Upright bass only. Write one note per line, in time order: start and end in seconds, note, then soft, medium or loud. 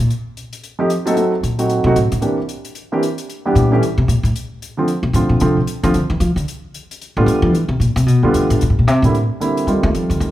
1.43 1.83 A#2 medium
1.84 1.95 C3 loud
1.96 2.11 A2 medium
2.12 2.22 A2 medium
3.55 3.80 A#2 medium
3.98 4.08 C3 loud
4.08 4.23 A#2 medium
4.23 4.30 A2 medium
5.03 5.13 C3 medium
5.13 5.29 A2 medium
5.29 5.40 A#2 medium
5.41 5.56 C3 loud
5.57 5.67 A2 soft
5.84 5.94 F3 loud
5.95 6.09 D3 medium
6.10 6.20 E3 loud
6.20 6.35 F3 loud
6.36 6.43 D3 medium
7.17 7.26 A2 medium
7.26 7.42 D3 medium
7.42 7.53 F3 loud
7.53 7.68 E3 loud
7.68 7.79 C3 medium
7.80 7.95 A#2 medium
7.96 8.06 C3 loud
8.06 8.22 B2 medium
8.23 8.33 D2 medium
8.34 8.49 F2 medium
8.50 8.60 A2 loud
8.62 8.69 A#2 medium
8.70 8.78 A2 medium
8.79 8.87 A#2 medium
8.87 9.02 C3 medium
9.02 9.28 A2 medium
9.67 9.83 G3 medium
9.83 9.94 A3 loud
9.95 10.09 F3 medium
10.10 10.20 D3 medium
10.20 10.31 D#3 medium